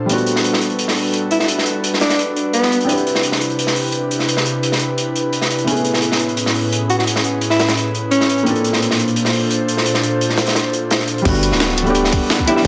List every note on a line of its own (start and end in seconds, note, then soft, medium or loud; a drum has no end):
0.00 5.64 D4 medium
0.06 2.85 G3 medium
0.06 2.86 A3 medium
0.06 2.86 B3 medium
0.06 2.86 F#4 medium
0.06 2.85 A4 medium
0.06 8.42 B4 medium
0.06 closed hi-hat medium
0.11 2.85 D4 medium
0.11 2.88 F#4 medium
0.18 closed hi-hat soft
0.26 closed hi-hat medium
0.36 snare soft
0.44 closed hi-hat medium
0.53 snare soft
0.61 closed hi-hat medium
0.70 closed hi-hat soft
0.79 closed hi-hat medium
0.88 snare soft
0.96 open hi-hat medium
1.14 closed hi-hat medium
1.31 1.37 E4 medium
1.31 closed hi-hat medium
1.40 1.46 E4 medium
1.40 snare soft
1.48 closed hi-hat medium
1.58 snare soft
1.66 closed hi-hat medium
1.84 closed hi-hat medium
1.94 snare soft
2.01 2.22 D4 medium
2.01 snare loud
2.01 closed hi-hat medium
2.10 snare medium
2.10 closed hi-hat medium
2.19 closed hi-hat medium
2.36 closed hi-hat medium
2.53 2.80 B3 medium
2.53 closed hi-hat medium
2.62 snare soft
2.72 closed hi-hat medium
2.81 closed hi-hat soft
2.85 5.64 C3 medium
2.85 5.64 C4 medium
2.85 5.64 D4 medium
2.85 5.65 E4 medium
2.85 8.42 E4 medium
2.85 5.64 G4 medium
2.89 5.66 G4 medium
2.89 5.67 B4 medium
2.89 closed hi-hat medium
2.97 closed hi-hat soft
3.07 closed hi-hat medium
3.15 snare soft
3.23 closed hi-hat medium
3.32 snare soft
3.41 closed hi-hat medium
3.50 closed hi-hat soft
3.59 closed hi-hat medium
3.67 snare soft
3.76 open hi-hat medium
3.92 closed hi-hat medium
4.11 closed hi-hat medium
4.19 snare soft
4.28 closed hi-hat medium
4.37 snare soft
4.45 closed hi-hat medium
4.63 closed hi-hat medium
4.72 snare soft
4.79 closed hi-hat medium
4.98 closed hi-hat medium
5.16 closed hi-hat medium
5.33 closed hi-hat medium
5.41 snare soft
5.50 closed hi-hat medium
5.58 closed hi-hat soft
5.64 8.44 A2 medium
5.64 8.43 A3 medium
5.64 8.44 B3 medium
5.64 8.44 C#4 medium
5.64 8.44 G#4 medium
5.64 closed hi-hat medium
5.69 8.45 E4 medium
5.69 8.46 G#4 medium
5.76 closed hi-hat soft
5.84 closed hi-hat medium
5.94 snare soft
6.02 closed hi-hat medium
6.12 snare soft
6.19 closed hi-hat medium
6.29 closed hi-hat soft
6.37 closed hi-hat medium
6.46 snare soft
6.55 open hi-hat medium
6.72 closed hi-hat medium
6.89 6.95 F#4 medium
6.89 closed hi-hat medium
6.98 7.04 F#4 medium
6.98 snare soft
7.07 closed hi-hat medium
7.16 snare soft
7.24 closed hi-hat medium
7.41 closed hi-hat medium
7.50 7.71 E4 medium
7.50 snare soft
7.59 snare medium
7.59 closed hi-hat medium
7.69 snare loud
7.69 closed hi-hat medium
7.77 closed hi-hat medium
7.95 closed hi-hat medium
8.11 8.50 C#4 medium
8.11 closed hi-hat medium
8.21 snare soft
8.29 closed hi-hat medium
8.38 closed hi-hat soft
8.43 11.23 A#2 medium
8.43 11.22 A#3 medium
8.43 11.23 C4 medium
8.43 11.23 D4 medium
8.43 11.24 D4 medium
8.43 11.23 F4 medium
8.43 11.23 A4 medium
8.43 11.23 C5 medium
8.43 closed hi-hat medium
8.48 11.24 F4 medium
8.48 11.25 A4 medium
8.55 closed hi-hat soft
8.64 closed hi-hat medium
8.73 snare soft
8.82 closed hi-hat medium
8.91 snare soft
8.99 closed hi-hat medium
9.08 closed hi-hat soft
9.16 closed hi-hat medium
9.25 snare soft
9.33 open hi-hat medium
9.50 closed hi-hat medium
9.68 closed hi-hat medium
9.77 snare soft
9.86 closed hi-hat medium
9.94 snare soft
10.03 closed hi-hat medium
10.21 closed hi-hat medium
10.30 snare soft
10.38 snare loud
10.38 closed hi-hat medium
10.46 snare medium
10.46 closed hi-hat medium
10.55 snare loud
10.55 closed hi-hat medium
10.73 closed hi-hat medium
10.90 snare loud
10.90 closed hi-hat medium
11.00 snare soft
11.07 closed hi-hat medium
11.18 11.81 G3 medium
11.18 closed hi-hat soft
11.24 11.53 G1 medium
11.24 11.83 A3 medium
11.24 11.84 B3 medium
11.24 11.85 D4 medium
11.24 12.67 A4 medium
11.24 12.67 F#5 medium
11.24 12.67 B5 medium
11.24 kick loud
11.24 closed hi-hat medium
11.24 crash loud
11.29 11.86 F#4 medium
11.35 closed hi-hat soft
11.43 closed hi-hat medium
11.43 tambourine medium
11.52 12.20 D1 medium
11.52 snare soft
11.60 snare loud
11.60 closed hi-hat medium
11.69 snare medium
11.78 closed hi-hat medium
11.78 tambourine medium
11.83 12.44 G3 medium
11.83 12.45 A3 medium
11.83 12.45 B3 medium
11.83 closed hi-hat soft
11.88 12.46 D4 medium
11.88 12.47 G4 medium
11.95 closed hi-hat medium
12.05 snare soft
12.12 kick loud
12.12 closed hi-hat medium
12.12 open hi-hat medium
12.12 tambourine medium
12.30 snare loud
12.30 closed hi-hat medium
12.39 kick medium
12.46 12.60 G3 loud
12.46 12.62 A3 medium
12.46 12.63 B3 medium
12.46 12.63 D4 medium
12.46 12.53 E4 medium
12.46 12.64 G4 loud
12.46 closed hi-hat medium
12.46 tambourine medium
12.56 12.62 E4 medium
12.56 snare soft
12.62 12.67 G3 medium
12.62 12.67 A3 medium